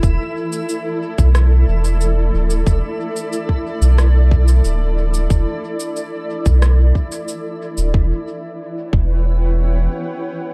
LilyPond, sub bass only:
\new Staff \with { instrumentName = "Sub bass" } { \clef bass \time 4/4 \key a \mixolydian \tempo 4 = 91 e,,16 r4. b,,8. e,,4 d,,8 | e,,16 r4. b,,4~ b,,16 d,,4 | e,,16 r4. b,,8. r4 r16 d,,16 | e,,16 r4 r16 e,,4. r4 | }